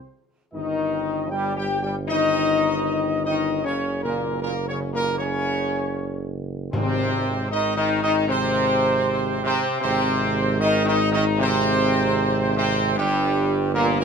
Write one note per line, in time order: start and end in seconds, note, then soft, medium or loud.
0.52 3.66 G1 loud
0.52 1.27 D#3 loud
0.52 1.28 D#4 loud
0.52 1.27 D#5 loud
1.30 1.54 G3 loud
1.30 1.56 G4 loud
1.30 1.55 G5 loud
1.55 1.67 G3 medium
1.55 1.78 G4 loud
1.55 1.81 G5 loud
1.80 1.94 G3 loud
1.80 1.92 G4 medium
1.80 1.94 G5 loud
2.07 3.23 D#3 loud
2.07 3.22 D#4 loud
2.07 3.22 D#5 loud
3.24 3.63 D#3 loud
3.24 3.62 D#4 loud
3.24 3.61 D#5 loud
3.64 6.73 F#1 loud
3.64 4.01 C#3 medium
3.64 4.01 C#4 loud
3.64 4.01 C#5 loud
4.03 4.40 A#2 loud
4.03 4.40 A#3 medium
4.03 4.40 A#4 loud
4.42 4.54 A#2 loud
4.42 4.66 A#3 medium
4.42 4.66 A#4 loud
4.67 4.81 C#3 medium
4.67 4.93 C#4 loud
4.67 4.79 C#5 loud
4.93 5.18 A#2 medium
4.93 5.17 A#3 loud
4.93 5.18 A#4 loud
5.19 6.31 C#3 loud
5.19 6.32 C#4 loud
5.19 6.31 C#5 loud
6.72 9.67 G#1 loud
6.72 7.85 G#2 loud
6.72 7.47 C3 loud
6.72 7.46 C4 loud
6.72 7.47 C5 loud
7.51 7.75 D#3 loud
7.51 7.75 D#4 loud
7.51 7.75 D#5 loud
7.76 8.01 D#3 loud
7.76 8.01 D#4 loud
7.76 7.88 D#5 loud
8.02 8.26 D#3 loud
8.02 8.27 D#4 loud
8.02 8.14 D#5 loud
8.26 9.39 C3 loud
8.26 9.41 C4 loud
8.26 9.40 C5 loud
9.43 9.79 C3 loud
9.43 9.81 C4 loud
9.43 9.80 C5 loud
9.80 12.99 G#1 loud
9.80 10.56 C3 loud
9.80 10.57 C5 loud
9.85 10.59 C4 loud
10.59 10.84 D#3 loud
10.59 10.85 D#5 loud
10.64 10.87 D#4 loud
10.85 10.97 D#3 loud
10.85 11.13 D#4 loud
10.85 11.11 D#5 loud
11.12 11.24 D#3 loud
11.12 11.24 D#5 loud
11.16 11.40 D#4 loud
11.37 12.52 C3 loud
11.37 12.54 C5 loud
11.43 12.55 C4 loud
12.55 12.93 C3 loud
12.55 12.94 C4 loud
12.55 12.94 C5 loud
12.95 14.04 G1 loud
12.95 13.70 G2 loud
12.95 13.59 G3 loud
12.95 13.71 G4 loud
13.74 13.99 A#2 loud
13.74 14.00 A#3 loud
13.74 13.87 A#4 loud
14.00 14.04 A#2 loud
14.00 14.04 A#4 loud